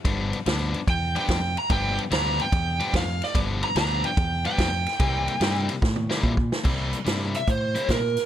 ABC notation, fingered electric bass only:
X:1
M:4/4
L:1/8
Q:"Swing" 1/4=145
K:Cmix
V:1 name="Fingered electric bass" clef=bass
G,,,2 D,,2 E,,2 F,,2 | G,,,2 D,,2 E,,2 F,,2 | G,,,2 D,,2 E,,2 F,,2 | C,,2 G,,2 A,,2 B,,2 |
C,,2 G,,2 A,,2 B,,2 |]